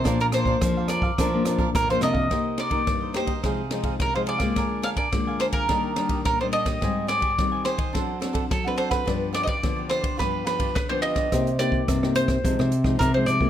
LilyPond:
<<
  \new Staff \with { instrumentName = "Cavaquinho" } { \time 4/4 \key bes \mixolydian \tempo 4 = 106 <d' bes' d'' f''>8 <d' bes' d'' f''>16 <d' bes' d'' f''>16 r16 <bes' d'' f''>16 <d' bes' d'' f''>16 <bes' d'' f''>16 <d' bes' d'' f''>8 <d' bes' d'' f''>16 <d' bes' d'' f''>16 r16 <bes' d'' f''>16 <d' bes' d'' f''>16 <bes' d'' f''>16 | \key c \minor <ees' bes' c'' ees''>8 <ees' bes' c'' ees''>16 <ees' bes' c'' ees''>16 r16 <bes' c'' ees''>16 <ees' bes' c'' ees''>16 <bes' c'' ees''>16 <ees' aes' c'' f''>8 <ees' aes' c'' f''>16 <ees' aes' c'' f''>16 r16 <aes' c'' f''>16 <ees' aes' c'' f''>16 <aes' c'' f''>16 | <d' bes' f'' aes''>8 <d' bes' f'' aes''>16 <d' bes' f'' aes''>16 r16 <bes' f'' aes''>16 <d' bes' f'' aes''>16 <bes' f'' aes''>16 <d' g' d'' ees''>8 <d' g' d'' ees''>16 <d' g' d'' ees''>16 r16 <g' d'' ees''>16 <d' g' d'' ees''>16 <g' d'' ees''>16 | <g' c'' ees'' aes''>8 <g' c'' ees'' aes''>16 <g' c'' ees'' aes''>16 r16 <c'' ees'' aes''>16 <g' c'' ees'' aes''>16 <c'' ees'' aes''>16 <d' a' c'' fis''>8 <d' a' c'' fis''>16 <d' a' c'' fis''>16 r16 <a' c'' fis''>16 <d' a' c'' fis''>16 <a' c'' fis''>16 |
<f' g' b' d''>8 <f' g' b' d''>16 <f' g' b' d''>16 r16 <g' b' d''>16 <f' g' b' d''>16 <g' b' d''>16 <f' g' b' d''>8 <f' g' b' d''>16 <f' g' b' d''>16 r16 <g' b' d''>16 <f' g' b' d''>16 <g' b' d''>16 | r1 | }
  \new Staff \with { instrumentName = "Mandolin" } { \time 4/4 \key bes \mixolydian c''16 bes'16 c''4 d''4. bes'16 c''16 ees''8~ | \key c \minor ees''8 d''4 c''4. bes'16 c''16 d''8~ | d''8 f''16 d''8. c''16 bes'4~ bes'16 bes'16 c''16 ees''8~ | ees''8 d''4 c''4. a'16 b'16 c''16 b'16~ |
b'8 d''32 ees''32 d''8. c''8 b'8 b'8 b'16 c''16 ees''8~ | ees''8 d''4 c''4. bes'16 c''16 d''8 | }
  \new Staff \with { instrumentName = "Nylon-string guitar" } { \time 4/4 \key bes \mixolydian << { <f bes d'>4 <f bes d'>8. r16 <f bes d'>16 <f bes d'>16 <f bes d'>8. <f bes d'>8. | \key c \minor <bes ees' g'>8. <bes ees' g'>8. <bes ees' g'>16 r16 <f aes ees'>16 r16 <f aes ees'>8. <f aes ees'>8 <aes bes f'>16~ | <aes bes f'>8. r16 <aes bes f'>4 <g bes d'>8 <g bes d'>8. <g bes d'>8. | <g c' ees'>8. r16 <g c' ees'>8. r16 <c' d' a'>16 r16 <c' d' a'>8 r16 <c' d' a'>8. |
<f b d'>8. r16 <f b d'>8. r16 <f b d'>8 <f b d'>8 r16 <f b d'>8. | <bes ees' g'>16 r16 <bes ees' g'>8. <bes ees' g'>8. <f aes ees'>8 r16 <f aes ees'>8 <f aes ees'>8 <aes bes f'>16 | } \\ { bes,4 f,4 bes,4 f,4 | c4 g,4 c4 c4 | d4 d4 ees4 bes,4 | aes,4 ees4 fis4 fis4 |
g,4 d4 g,4 d4 | c4 g,4 c4 c4 | } >> }
  \new Staff \with { instrumentName = "Nylon-string guitar" } { \clef bass \time 4/4 \key bes \mixolydian bes,4 f4 f4 bes,8 c8 | \key c \minor r1 | r1 | r1 |
r1 | c4 c4 c16 c8. c8 c8 | }
  \new DrumStaff \with { instrumentName = "Drums" } \drummode { \time 4/4 <hh bd ss>16 hh16 <hh ss>16 bd16 <hh bd ss>8 <hh ss>16 bd16 <hh bd ss>8 <hh ss>16 bd16 <hh bd ss>16 hh16 <hh ss>16 bd16 | <bd cymr ss>8 <cymr ss>16 <bd cymr>16 <bd cymr ss>8 <cymr ss>16 <bd cymr>16 <bd cymr ss>8 <cymr ss>16 <bd cymr>16 <bd cymr ss>8 cymr16 <bd cymr ss>16 | <bd cymr ss>8 <cymr ss>16 <bd cymr>16 <bd cymr ss>8 <cymr ss>16 <bd cymr>16 <bd cymr ss>8 <cymr ss>16 <bd cymr>16 <bd cymr ss>8 cymr16 <bd cymr ss>16 | <bd cymr ss>8 <cymr ss>16 <bd cymr>16 <bd cymr ss>8 <cymr ss>16 <bd cymr>16 <bd cymr ss>8 <cymr ss>16 <bd cymr>16 <bd cymr ss>8 cymr16 <bd cymr ss>16 |
<bd cymr ss>8 <cymr ss>16 <bd cymr>16 <bd cymr ss>8 <cymr ss>16 <bd cymr>16 <bd cymr ss>8 <cymr ss>16 <bd cymr>16 <bd cymr ss>8 cymr16 <bd cymr ss>16 | <hh bd ss>16 hh16 <hh ss>16 bd16 <hh bd ss>16 ss16 hh16 <hh bd ss>16 <hh bd>16 ss16 hh16 <bd ss>16 <hh bd ss>8 hh16 bd16 | }
>>